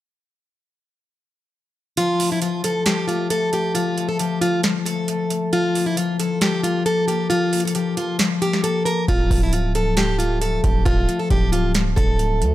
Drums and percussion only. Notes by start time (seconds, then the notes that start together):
1.97 closed hi-hat
2.20 open hi-hat
2.42 closed hi-hat
2.64 closed hi-hat
2.86 snare, closed hi-hat
3.09 closed hi-hat
3.30 closed hi-hat
3.53 closed hi-hat
3.75 closed hi-hat
3.98 closed hi-hat
4.19 closed hi-hat
4.42 closed hi-hat
4.63 snare, closed hi-hat
4.86 closed hi-hat
5.08 closed hi-hat
5.30 closed hi-hat
5.53 closed hi-hat
5.75 open hi-hat
5.97 closed hi-hat
6.20 closed hi-hat
6.41 snare, closed hi-hat
6.64 closed hi-hat
6.86 closed hi-hat
7.08 closed hi-hat
7.31 closed hi-hat
7.53 closed hi-hat, open hi-hat
7.60 closed hi-hat
7.67 closed hi-hat
7.75 closed hi-hat
7.97 closed hi-hat
8.19 snare, closed hi-hat
8.42 closed hi-hat
8.53 snare
8.64 closed hi-hat
8.86 closed hi-hat
9.08 kick, closed hi-hat
9.31 kick, open hi-hat
9.53 closed hi-hat
9.75 closed hi-hat
9.97 snare, closed hi-hat
10.20 closed hi-hat
10.42 closed hi-hat
10.64 kick, closed hi-hat
10.86 kick, closed hi-hat
11.09 closed hi-hat
11.30 kick, closed hi-hat
11.53 closed hi-hat
11.75 snare, closed hi-hat
11.97 kick, closed hi-hat
12.19 closed hi-hat
12.42 closed hi-hat